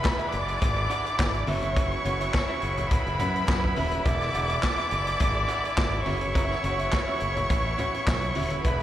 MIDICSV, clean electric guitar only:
0, 0, Header, 1, 3, 480
1, 0, Start_track
1, 0, Tempo, 573614
1, 1476, Time_signature, 4, 2, 24, 8
1, 7387, End_track
2, 0, Start_track
2, 0, Title_t, "Clean electric guitar"
2, 0, Program_c, 0, 27
2, 151, Note_on_c, 0, 76, 95
2, 154, Note_on_c, 0, 71, 86
2, 156, Note_on_c, 0, 68, 81
2, 158, Note_on_c, 0, 62, 70
2, 257, Note_off_c, 0, 62, 0
2, 257, Note_off_c, 0, 68, 0
2, 258, Note_off_c, 0, 71, 0
2, 261, Note_off_c, 0, 76, 0
2, 751, Note_on_c, 0, 62, 101
2, 752, Note_on_c, 0, 68, 97
2, 756, Note_on_c, 0, 71, 97
2, 760, Note_on_c, 0, 78, 102
2, 876, Note_off_c, 0, 71, 0
2, 879, Note_off_c, 0, 68, 0
2, 880, Note_off_c, 0, 78, 0
2, 928, Note_off_c, 0, 62, 0
2, 1233, Note_on_c, 0, 61, 78
2, 1236, Note_on_c, 0, 66, 85
2, 1240, Note_on_c, 0, 71, 76
2, 1242, Note_on_c, 0, 76, 87
2, 1352, Note_off_c, 0, 76, 0
2, 1354, Note_off_c, 0, 71, 0
2, 1356, Note_off_c, 0, 66, 0
2, 1360, Note_off_c, 0, 61, 0
2, 1362, Note_on_c, 0, 76, 72
2, 1364, Note_on_c, 0, 71, 71
2, 1366, Note_on_c, 0, 66, 56
2, 1370, Note_on_c, 0, 61, 59
2, 1463, Note_off_c, 0, 61, 0
2, 1467, Note_off_c, 0, 66, 0
2, 1469, Note_off_c, 0, 71, 0
2, 1471, Note_off_c, 0, 76, 0
2, 1473, Note_on_c, 0, 61, 83
2, 1477, Note_on_c, 0, 66, 94
2, 1479, Note_on_c, 0, 71, 96
2, 1481, Note_on_c, 0, 76, 84
2, 1649, Note_off_c, 0, 61, 0
2, 1651, Note_off_c, 0, 66, 0
2, 1652, Note_off_c, 0, 71, 0
2, 1653, Note_off_c, 0, 76, 0
2, 1713, Note_on_c, 0, 61, 66
2, 1717, Note_on_c, 0, 66, 68
2, 1721, Note_on_c, 0, 71, 68
2, 1723, Note_on_c, 0, 78, 67
2, 1834, Note_off_c, 0, 71, 0
2, 1834, Note_off_c, 0, 78, 0
2, 1836, Note_off_c, 0, 66, 0
2, 1838, Note_on_c, 0, 76, 63
2, 1840, Note_off_c, 0, 61, 0
2, 1844, Note_on_c, 0, 71, 55
2, 1846, Note_on_c, 0, 66, 64
2, 1850, Note_on_c, 0, 61, 52
2, 1944, Note_off_c, 0, 61, 0
2, 1949, Note_off_c, 0, 66, 0
2, 1951, Note_off_c, 0, 71, 0
2, 1951, Note_off_c, 0, 76, 0
2, 2080, Note_on_c, 0, 76, 89
2, 2084, Note_on_c, 0, 71, 95
2, 2088, Note_on_c, 0, 61, 75
2, 2088, Note_on_c, 0, 66, 83
2, 2186, Note_off_c, 0, 61, 0
2, 2187, Note_off_c, 0, 71, 0
2, 2188, Note_off_c, 0, 66, 0
2, 2192, Note_off_c, 0, 76, 0
2, 2674, Note_on_c, 0, 61, 100
2, 2675, Note_on_c, 0, 66, 90
2, 2677, Note_on_c, 0, 71, 105
2, 2681, Note_on_c, 0, 78, 97
2, 2794, Note_off_c, 0, 71, 0
2, 2798, Note_off_c, 0, 66, 0
2, 2800, Note_off_c, 0, 78, 0
2, 2849, Note_off_c, 0, 61, 0
2, 3150, Note_on_c, 0, 61, 84
2, 3154, Note_on_c, 0, 66, 80
2, 3155, Note_on_c, 0, 71, 96
2, 3157, Note_on_c, 0, 76, 93
2, 3269, Note_off_c, 0, 76, 0
2, 3270, Note_off_c, 0, 71, 0
2, 3274, Note_off_c, 0, 66, 0
2, 3275, Note_off_c, 0, 61, 0
2, 3279, Note_on_c, 0, 76, 66
2, 3280, Note_on_c, 0, 71, 62
2, 3284, Note_on_c, 0, 66, 60
2, 3285, Note_on_c, 0, 61, 56
2, 3386, Note_off_c, 0, 71, 0
2, 3390, Note_off_c, 0, 61, 0
2, 3391, Note_off_c, 0, 66, 0
2, 3392, Note_off_c, 0, 76, 0
2, 3393, Note_on_c, 0, 62, 87
2, 3395, Note_on_c, 0, 68, 89
2, 3396, Note_on_c, 0, 71, 80
2, 3402, Note_on_c, 0, 76, 85
2, 3569, Note_off_c, 0, 62, 0
2, 3570, Note_off_c, 0, 68, 0
2, 3570, Note_off_c, 0, 71, 0
2, 3573, Note_off_c, 0, 76, 0
2, 3630, Note_on_c, 0, 62, 61
2, 3636, Note_on_c, 0, 68, 62
2, 3638, Note_on_c, 0, 71, 61
2, 3639, Note_on_c, 0, 78, 66
2, 3754, Note_off_c, 0, 71, 0
2, 3756, Note_off_c, 0, 68, 0
2, 3756, Note_off_c, 0, 78, 0
2, 3759, Note_off_c, 0, 62, 0
2, 3759, Note_on_c, 0, 76, 57
2, 3764, Note_on_c, 0, 71, 56
2, 3766, Note_on_c, 0, 68, 58
2, 3769, Note_on_c, 0, 62, 57
2, 3863, Note_off_c, 0, 62, 0
2, 3865, Note_off_c, 0, 68, 0
2, 3865, Note_off_c, 0, 71, 0
2, 3869, Note_off_c, 0, 76, 0
2, 3996, Note_on_c, 0, 76, 88
2, 4002, Note_on_c, 0, 68, 75
2, 4002, Note_on_c, 0, 71, 91
2, 4005, Note_on_c, 0, 62, 75
2, 4103, Note_off_c, 0, 62, 0
2, 4106, Note_off_c, 0, 68, 0
2, 4109, Note_off_c, 0, 71, 0
2, 4111, Note_off_c, 0, 76, 0
2, 4584, Note_on_c, 0, 62, 103
2, 4589, Note_on_c, 0, 68, 101
2, 4592, Note_on_c, 0, 71, 106
2, 4593, Note_on_c, 0, 78, 117
2, 4710, Note_off_c, 0, 71, 0
2, 4713, Note_off_c, 0, 78, 0
2, 4714, Note_off_c, 0, 68, 0
2, 4765, Note_off_c, 0, 62, 0
2, 5070, Note_on_c, 0, 61, 82
2, 5070, Note_on_c, 0, 66, 83
2, 5076, Note_on_c, 0, 71, 77
2, 5078, Note_on_c, 0, 76, 92
2, 5191, Note_off_c, 0, 76, 0
2, 5193, Note_off_c, 0, 71, 0
2, 5197, Note_off_c, 0, 66, 0
2, 5248, Note_off_c, 0, 61, 0
2, 5306, Note_on_c, 0, 61, 86
2, 5308, Note_on_c, 0, 66, 91
2, 5312, Note_on_c, 0, 71, 97
2, 5317, Note_on_c, 0, 76, 106
2, 5486, Note_off_c, 0, 61, 0
2, 5487, Note_off_c, 0, 66, 0
2, 5489, Note_off_c, 0, 71, 0
2, 5491, Note_off_c, 0, 76, 0
2, 5551, Note_on_c, 0, 61, 62
2, 5553, Note_on_c, 0, 66, 70
2, 5557, Note_on_c, 0, 71, 72
2, 5561, Note_on_c, 0, 78, 66
2, 5672, Note_off_c, 0, 66, 0
2, 5672, Note_off_c, 0, 71, 0
2, 5674, Note_off_c, 0, 78, 0
2, 5677, Note_off_c, 0, 61, 0
2, 5677, Note_on_c, 0, 76, 67
2, 5682, Note_on_c, 0, 66, 54
2, 5682, Note_on_c, 0, 71, 63
2, 5687, Note_on_c, 0, 61, 48
2, 5782, Note_off_c, 0, 61, 0
2, 5785, Note_off_c, 0, 66, 0
2, 5786, Note_off_c, 0, 71, 0
2, 5788, Note_off_c, 0, 76, 0
2, 5917, Note_on_c, 0, 76, 83
2, 5920, Note_on_c, 0, 71, 88
2, 5925, Note_on_c, 0, 61, 72
2, 5925, Note_on_c, 0, 66, 72
2, 6022, Note_off_c, 0, 61, 0
2, 6025, Note_off_c, 0, 66, 0
2, 6028, Note_off_c, 0, 71, 0
2, 6028, Note_off_c, 0, 76, 0
2, 6513, Note_on_c, 0, 61, 93
2, 6516, Note_on_c, 0, 66, 100
2, 6521, Note_on_c, 0, 71, 99
2, 6524, Note_on_c, 0, 78, 108
2, 6643, Note_off_c, 0, 71, 0
2, 6645, Note_off_c, 0, 66, 0
2, 6646, Note_off_c, 0, 78, 0
2, 6690, Note_off_c, 0, 61, 0
2, 6991, Note_on_c, 0, 61, 81
2, 6994, Note_on_c, 0, 66, 85
2, 6997, Note_on_c, 0, 71, 83
2, 7000, Note_on_c, 0, 76, 98
2, 7111, Note_off_c, 0, 76, 0
2, 7114, Note_off_c, 0, 66, 0
2, 7114, Note_off_c, 0, 71, 0
2, 7120, Note_off_c, 0, 61, 0
2, 7121, Note_on_c, 0, 76, 65
2, 7124, Note_on_c, 0, 66, 62
2, 7124, Note_on_c, 0, 71, 57
2, 7130, Note_on_c, 0, 61, 56
2, 7223, Note_off_c, 0, 61, 0
2, 7226, Note_off_c, 0, 71, 0
2, 7227, Note_off_c, 0, 66, 0
2, 7227, Note_on_c, 0, 62, 86
2, 7230, Note_off_c, 0, 76, 0
2, 7230, Note_on_c, 0, 68, 88
2, 7236, Note_on_c, 0, 71, 96
2, 7240, Note_on_c, 0, 76, 103
2, 7387, Note_off_c, 0, 62, 0
2, 7387, Note_off_c, 0, 68, 0
2, 7387, Note_off_c, 0, 71, 0
2, 7387, Note_off_c, 0, 76, 0
2, 7387, End_track
3, 0, Start_track
3, 0, Title_t, "Muted clean electric guitar strokes"
3, 27, Note_on_c, 9, 29, 48
3, 111, Note_off_c, 9, 29, 0
3, 267, Note_on_c, 9, 29, 47
3, 350, Note_off_c, 9, 29, 0
3, 396, Note_on_c, 9, 29, 50
3, 480, Note_off_c, 9, 29, 0
3, 642, Note_on_c, 9, 29, 41
3, 725, Note_off_c, 9, 29, 0
3, 883, Note_on_c, 9, 29, 50
3, 967, Note_off_c, 9, 29, 0
3, 999, Note_on_c, 9, 29, 41
3, 1082, Note_off_c, 9, 29, 0
3, 1128, Note_on_c, 9, 29, 59
3, 1212, Note_off_c, 9, 29, 0
3, 1954, Note_on_c, 9, 29, 38
3, 2038, Note_off_c, 9, 29, 0
3, 2196, Note_on_c, 9, 29, 35
3, 2280, Note_off_c, 9, 29, 0
3, 2321, Note_on_c, 9, 29, 48
3, 2405, Note_off_c, 9, 29, 0
3, 2569, Note_on_c, 9, 29, 42
3, 2653, Note_off_c, 9, 29, 0
3, 2803, Note_on_c, 9, 29, 51
3, 2887, Note_off_c, 9, 29, 0
3, 2915, Note_on_c, 9, 29, 42
3, 2999, Note_off_c, 9, 29, 0
3, 3044, Note_on_c, 9, 29, 38
3, 3127, Note_off_c, 9, 29, 0
3, 3873, Note_on_c, 9, 29, 41
3, 3957, Note_off_c, 9, 29, 0
3, 4113, Note_on_c, 9, 29, 43
3, 4197, Note_off_c, 9, 29, 0
3, 4242, Note_on_c, 9, 29, 51
3, 4326, Note_off_c, 9, 29, 0
3, 4477, Note_on_c, 9, 29, 44
3, 4561, Note_off_c, 9, 29, 0
3, 4717, Note_on_c, 9, 29, 40
3, 4800, Note_off_c, 9, 29, 0
3, 4830, Note_on_c, 9, 29, 50
3, 4914, Note_off_c, 9, 29, 0
3, 4956, Note_on_c, 9, 29, 44
3, 5040, Note_off_c, 9, 29, 0
3, 5201, Note_on_c, 9, 29, 57
3, 5284, Note_off_c, 9, 29, 0
3, 5792, Note_on_c, 9, 29, 48
3, 5875, Note_off_c, 9, 29, 0
3, 6032, Note_on_c, 9, 29, 52
3, 6115, Note_off_c, 9, 29, 0
3, 6155, Note_on_c, 9, 29, 53
3, 6239, Note_off_c, 9, 29, 0
3, 6403, Note_on_c, 9, 29, 49
3, 6487, Note_off_c, 9, 29, 0
3, 6649, Note_on_c, 9, 29, 49
3, 6733, Note_off_c, 9, 29, 0
3, 6761, Note_on_c, 9, 29, 41
3, 6845, Note_off_c, 9, 29, 0
3, 6883, Note_on_c, 9, 29, 40
3, 6967, Note_off_c, 9, 29, 0
3, 7387, End_track
0, 0, End_of_file